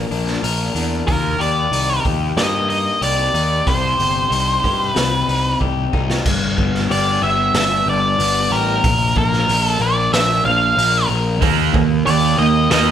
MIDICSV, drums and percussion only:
0, 0, Header, 1, 2, 480
1, 0, Start_track
1, 0, Tempo, 646552
1, 800, Time_signature, 4, 2, 24, 8
1, 9586, End_track
2, 0, Start_track
2, 0, Title_t, "Drums"
2, 85, Note_on_c, 9, 46, 52
2, 159, Note_off_c, 9, 46, 0
2, 202, Note_on_c, 9, 38, 29
2, 276, Note_off_c, 9, 38, 0
2, 326, Note_on_c, 9, 46, 69
2, 400, Note_off_c, 9, 46, 0
2, 561, Note_on_c, 9, 46, 47
2, 635, Note_off_c, 9, 46, 0
2, 802, Note_on_c, 9, 36, 106
2, 804, Note_on_c, 9, 46, 65
2, 876, Note_off_c, 9, 36, 0
2, 878, Note_off_c, 9, 46, 0
2, 1045, Note_on_c, 9, 46, 43
2, 1119, Note_off_c, 9, 46, 0
2, 1283, Note_on_c, 9, 46, 66
2, 1357, Note_off_c, 9, 46, 0
2, 1523, Note_on_c, 9, 36, 81
2, 1524, Note_on_c, 9, 46, 45
2, 1597, Note_off_c, 9, 36, 0
2, 1598, Note_off_c, 9, 46, 0
2, 1764, Note_on_c, 9, 38, 106
2, 1764, Note_on_c, 9, 46, 63
2, 1838, Note_off_c, 9, 38, 0
2, 1838, Note_off_c, 9, 46, 0
2, 2003, Note_on_c, 9, 46, 47
2, 2078, Note_off_c, 9, 46, 0
2, 2244, Note_on_c, 9, 46, 66
2, 2318, Note_off_c, 9, 46, 0
2, 2486, Note_on_c, 9, 46, 51
2, 2560, Note_off_c, 9, 46, 0
2, 2724, Note_on_c, 9, 36, 104
2, 2727, Note_on_c, 9, 46, 59
2, 2799, Note_off_c, 9, 36, 0
2, 2801, Note_off_c, 9, 46, 0
2, 2967, Note_on_c, 9, 46, 51
2, 3041, Note_off_c, 9, 46, 0
2, 3207, Note_on_c, 9, 46, 61
2, 3281, Note_off_c, 9, 46, 0
2, 3447, Note_on_c, 9, 36, 75
2, 3450, Note_on_c, 9, 46, 50
2, 3521, Note_off_c, 9, 36, 0
2, 3525, Note_off_c, 9, 46, 0
2, 3684, Note_on_c, 9, 38, 109
2, 3684, Note_on_c, 9, 46, 70
2, 3758, Note_off_c, 9, 38, 0
2, 3758, Note_off_c, 9, 46, 0
2, 3927, Note_on_c, 9, 46, 50
2, 4002, Note_off_c, 9, 46, 0
2, 4164, Note_on_c, 9, 36, 62
2, 4238, Note_off_c, 9, 36, 0
2, 4405, Note_on_c, 9, 36, 77
2, 4479, Note_off_c, 9, 36, 0
2, 4527, Note_on_c, 9, 38, 76
2, 4601, Note_off_c, 9, 38, 0
2, 4644, Note_on_c, 9, 49, 105
2, 4645, Note_on_c, 9, 36, 99
2, 4719, Note_off_c, 9, 36, 0
2, 4719, Note_off_c, 9, 49, 0
2, 4886, Note_on_c, 9, 36, 87
2, 4960, Note_off_c, 9, 36, 0
2, 5009, Note_on_c, 9, 38, 30
2, 5084, Note_off_c, 9, 38, 0
2, 5131, Note_on_c, 9, 46, 48
2, 5205, Note_off_c, 9, 46, 0
2, 5602, Note_on_c, 9, 38, 106
2, 5602, Note_on_c, 9, 46, 57
2, 5677, Note_off_c, 9, 38, 0
2, 5677, Note_off_c, 9, 46, 0
2, 6086, Note_on_c, 9, 46, 64
2, 6160, Note_off_c, 9, 46, 0
2, 6562, Note_on_c, 9, 46, 63
2, 6564, Note_on_c, 9, 36, 110
2, 6636, Note_off_c, 9, 46, 0
2, 6638, Note_off_c, 9, 36, 0
2, 6803, Note_on_c, 9, 36, 88
2, 6877, Note_off_c, 9, 36, 0
2, 6926, Note_on_c, 9, 38, 32
2, 7000, Note_off_c, 9, 38, 0
2, 7046, Note_on_c, 9, 46, 57
2, 7120, Note_off_c, 9, 46, 0
2, 7526, Note_on_c, 9, 38, 114
2, 7526, Note_on_c, 9, 46, 59
2, 7600, Note_off_c, 9, 38, 0
2, 7600, Note_off_c, 9, 46, 0
2, 8007, Note_on_c, 9, 46, 58
2, 8081, Note_off_c, 9, 46, 0
2, 8478, Note_on_c, 9, 46, 50
2, 8479, Note_on_c, 9, 36, 104
2, 8552, Note_off_c, 9, 46, 0
2, 8553, Note_off_c, 9, 36, 0
2, 8718, Note_on_c, 9, 36, 94
2, 8792, Note_off_c, 9, 36, 0
2, 8958, Note_on_c, 9, 46, 51
2, 9032, Note_off_c, 9, 46, 0
2, 9436, Note_on_c, 9, 38, 106
2, 9436, Note_on_c, 9, 46, 54
2, 9511, Note_off_c, 9, 38, 0
2, 9511, Note_off_c, 9, 46, 0
2, 9586, End_track
0, 0, End_of_file